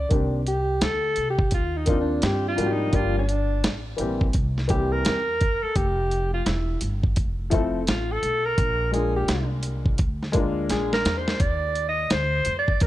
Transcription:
0.09 C2 D#3 A#3 C4 D4 G4, kick, closed hi-hat
0.47 G4, closed hi-hat
0.81 D2 A4, snare, closed hi-hat
1.16 C2, closed hi-hat
1.30 G4
1.39 kick
1.51 D#2 F4, kick, closed hi-hat
1.77 D#4
1.85 D#3 A#3 C4 D4 F4, kick, closed hi-hat
2.01 D4
2.22 G2 G4, snare, closed hi-hat
2.48 F4
2.56 G#1 F3 G3 A#3 D4 F#4, closed hi-hat
2.66 G4
2.71 D#4
2.91 G1 F3 G3 A#3 D4 F4 G4, kick, closed hi-hat
3.18 D4
3.29 closed hi-hat
3.64 snare, closed hi-hat
3.97 A#1 E3 G3 A#3 C4 G4, closed hi-hat
4.21 kick
4.33 C2, kick, closed hi-hat
4.58 snare
4.68 E3 G3 A#3 C4 G4, kick, closed hi-hat
4.92 A#4
5.05 E2, snare, closed hi-hat
5.41 kick, closed hi-hat
5.63 A4, muted upright bass stroke
5.76 F1 G4, kick, closed hi-hat
6.11 closed hi-hat
6.34 F4
6.46 E1 E4, snare, closed hi-hat
6.81 G1, closed hi-hat
7.03 kick
7.16 F1, kick, closed hi-hat
7.50 F3 A3 C4 E4 A4, kick, closed hi-hat
7.87 A1 F4, snare, closed hi-hat
8.11 A4
8.23 B1, closed hi-hat
8.46 A#4
8.58 A#1, kick, closed hi-hat
8.91 G#3 A#3 D4 F4 G#4, closed hi-hat
8.95 A#4
9.16 G4
9.28 C2, snare, closed hi-hat
9.63 closed hi-hat
9.86 kick
9.98 D2, kick, closed hi-hat
10.23 snare
10.32 G#3 A#3 D4 F4, kick, closed hi-hat
10.36 A#4
10.69 A#1 G#4, snare, closed hi-hat
10.93 A#4, snare
11.05 E2, snare, closed hi-hat
11.18 C5
11.28 snare
11.40 D#2 D5, kick, closed hi-hat
11.75 closed hi-hat
11.88 D#5
12.10 D2 C5, snare, closed hi-hat
12.45 F2, closed hi-hat
12.59 D5
12.68 kick
12.80 D#2 A#4, kick, closed hi-hat

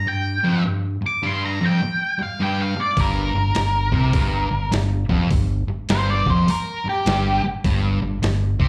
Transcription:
0.07 G2 G5
0.44 F2
0.65 G2
1.02 muted distorted electric guitar stroke
1.06 D6
1.23 G2 C6
1.45 A#5
1.61 F2
1.66 G5
1.82 muted distorted electric guitar stroke
2.19 muted distorted electric guitar stroke
2.23 F5
2.40 G2 G5
2.62 F5
2.76 muted distorted electric guitar stroke
2.81 D5
2.97 G1 G2 A#4, kick, open hi-hat
3.34 G1 G2
3.55 G1 G2, snare, open hi-hat
3.92 C2 C3, kick
4.13 G1 G2, kick, open hi-hat
4.50 G1 G2
4.72 G1 G2, snare, open hi-hat
5.09 F1 F2, kick
5.30 G1 G2, kick, open hi-hat
5.68 muted fingered electric bass stroke, muted distorted electric guitar stroke
5.89 G1 G2 C5, snare, open hi-hat
6.10 D5
6.26 F1 F2 C5, kick
6.48 A#4, muted distorted electric guitar stroke, muted fingered electric bass stroke, open hi-hat
6.85 muted fingered electric bass stroke, muted distorted electric guitar stroke
6.89 G4
7.06 G1 G2, snare, open hi-hat
7.44 muted fingered electric bass stroke, muted distorted electric guitar stroke
7.64 G1 G2, kick, open hi-hat
8.02 G1 G2
8.22 G1 G2, snare, open hi-hat
8.60 C2 C3, kick

